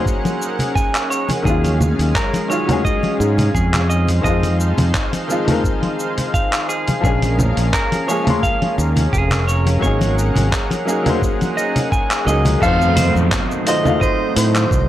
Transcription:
Already playing: F#3 A#3 C#4 D#4 G#4 A#4 C5 F#5
0.06 kick, cabasa
0.25 open hi-hat, high conga, cabasa
0.42 cabasa
0.59 open hi-hat, low conga, cabasa
0.75 G#5, kick, cabasa
0.95 clap, open hi-hat, cabasa
1.10 C#5, cabasa
1.29 open hi-hat, high conga, low conga, cabasa
1.42 D#2 D#3 F#3 G#3 C#4 G#4 F5, kick
1.47 C#4 F4, cabasa
1.64 open hi-hat, high conga, cabasa
1.81 low conga, cabasa
1.99 D#2, open hi-hat, cabasa
2.15 A#4, kick, clap, cabasa
2.34 open hi-hat, high conga, cabasa
2.48 D#3 F#3 G#3 C#4 F4 C#5, cabasa
2.65 D#3 G#3 F#4, open hi-hat, low conga
2.70 C#4 G#4, cabasa
2.85 D#5, kick, cabasa
3.03 open hi-hat, high conga
3.20 G#2, cabasa
3.38 open hi-hat, low conga, cabasa
3.55 F2 G#4, kick, cabasa
3.74 clap, open hi-hat, low conga, cabasa
3.89 D#4 C5 D#5, cabasa
4.08 open hi-hat, high conga, cabasa
4.21 F2 D#3 F3 G#3 D#5, kick
4.26 C4 F4, cabasa
4.43 open hi-hat, high conga, cabasa
4.60 cabasa
4.78 F2, open hi-hat, low conga, cabasa
4.94 kick, clap, cabasa
5.13 open hi-hat, high conga, cabasa
5.28 D#3 F3 G#3 C4 F4, cabasa
5.45 D#3 F3 G#3, open hi-hat, low conga
5.49 C4 A#4, cabasa
5.64 kick, cabasa
5.83 open hi-hat, high conga
6.00 cabasa
6.18 open hi-hat, low conga, cabasa
6.34 F5, kick, cabasa
6.53 clap, open hi-hat, cabasa
6.69 G#4, cabasa
6.88 open hi-hat, high conga, low conga, cabasa
7.01 A#1 F3 G#3 A#3 C#4 G#4 A#4, kick, cabasa
7.06 C#4 G#4
7.22 open hi-hat, high conga, cabasa
7.39 low conga, cabasa
7.57 A#1, open hi-hat, cabasa
7.73 A#4, kick, clap, cabasa
7.92 open hi-hat, high conga, cabasa
8.07 F3 G#3 A#3 C#4 G#4 C#5, cabasa
8.24 F3 G#3 A#3, open hi-hat, low conga
8.28 C#4 C6, cabasa
8.43 F5, kick, cabasa
8.62 open hi-hat, high conga
8.78 D#2, cabasa
8.96 open hi-hat, low conga, cabasa
9.13 F1 G#4, kick, cabasa
9.31 clap, open hi-hat, low conga, cabasa
9.48 C#5, cabasa
9.66 open hi-hat, high conga, cabasa
9.79 G#1 F#3 A#3 C#4 C#5, kick
9.83 D#4 G#4 F#5, cabasa
10.01 open hi-hat, high conga, cabasa
10.19 cabasa
10.36 G#1, open hi-hat, low conga, cabasa
10.52 kick, clap, cabasa
10.71 open hi-hat, high conga, cabasa
10.85 F#3 A#3 C#4 D#4 G#4, cabasa
11.02 F#3 A#3 C#4, open hi-hat, low conga
11.07 D#4 C5, cabasa
11.22 kick, cabasa
11.41 open hi-hat, high conga, cabasa
11.57 D#5, cabasa
11.76 open hi-hat, low conga, cabasa
11.92 G#5, kick, cabasa
12.11 clap, open hi-hat, cabasa
12.25 C#2 F#3 A#3 C#4 D#4 G#4 D#5, cabasa
12.45 open hi-hat, high conga, low conga, cabasa
12.59 F2 D#3 F#3 A3 C4 D#4 F4 A4 D#5, kick, downlifter
12.63 F#4 C5 F5, cabasa
12.81 cabasa
12.96 C5, open hi-hat, low conga, cabasa
13.15 F2, cabasa
13.32 kick, clap, cabasa
13.51 cabasa
13.65 A3 D#4 F4 F#4 C5 D#5, open hi-hat, cabasa
13.82 A3 D#4 F4, low conga
13.86 F#4 F5, cabasa
14.01 C5 D#5, kick, cabasa
14.36 A2 C5, open hi-hat, cabasa
14.55 clap, cabasa
14.71 C2, kick, cabasa

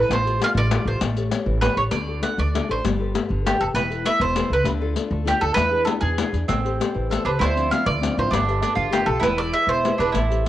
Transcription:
Already playing: B4
0.08 A1 A3, riq
0.13 C5
0.24 F4 G4 A4, riq
0.39 F4 G4 A4, riq
0.44 F5
0.55 A1 A3 D5
0.71 F4 G4 A4, riq
0.85 A1 F4 G4 A4 C5
1.01 A1 A3, riq
1.17 G4 A4 C#5, riq
1.31 G4 A4 C#5, riq
1.46 A1 E3
1.61 G4 A4 B4 C#5, riq
1.77 A1 G4 A4 C#5
1.91 D2 D3 D5, riq
2.08 D4 F#4 A4
2.22 D4 F#4 A4 F#5, riq
2.38 D2 A3 D5, riq
2.54 D4 F#4 A4, riq
2.69 A1 D4 F#4 A4 C5
2.84 G1 G3, riq
2.99 G4 A4 B4
3.14 G4 A4 B4, riq
3.29 G1 D3
3.45 G4 A4 B4, riq
3.59 F1 G4 A4 B4
3.74 E1 E3 B4, riq
3.90 E4 A4 B4, riq
4.04 E4 A4 B4 E5, riq
4.20 E1 B2 C5
4.36 E4 A4 B4, riq
4.50 C#2 E4 A4 B4
4.64 D2 D3, riq
4.80 D4 F4 A4
4.96 D4 F4 A4, riq
5.11 D2 A3
5.25 D4 F4 G4 A4, riq
5.40 D2 D4 F4 A4
5.54 E2 E3 B4, riq
5.71 D4 E4 G#4
5.85 D4 E4 G#4 A4, riq
6.01 E2 B2 G#4, riq
6.18 D4 E4 G#4, riq
6.33 E2 D4 E4 G#4, riq
6.48 A1 A3 C4, riq
6.65 G4 A4 C5, riq
6.80 G4 A4 C5, riq
6.94 A1 E3
7.10 G4 A4 C5, riq
7.25 C#2 D4 G4 A4 B4 C5
7.39 D2 D3 E4 C5, riq
7.55 F3 C4 D4, riq
7.70 F3 C4 D4 F5, riq
7.85 D2 A3 D5
8.01 F3 C4 D4, riq
8.17 G#1 C4 D4 F4 C5
8.31 G1 G3 D4, riq
8.47 G4 A4 B4, riq
8.62 D4 G4 A4 B4, riq
8.75 G1 D3 F4
8.90 G4 A4 B4, riq
9.06 B1 G4 A4 B4
9.20 E1 E3 E4 B4, riq
9.38 E4 G#4 B4 D5
9.54 E4 G#4 B4 E5
9.67 E1 B2 C5
9.85 E4 G#4 B4, riq
9.98 E1 D4 E4 G#4 B4, riq
10.12 A1 A3 E4, riq
10.30 G4 A4 C5, riq
10.45 G4 A4

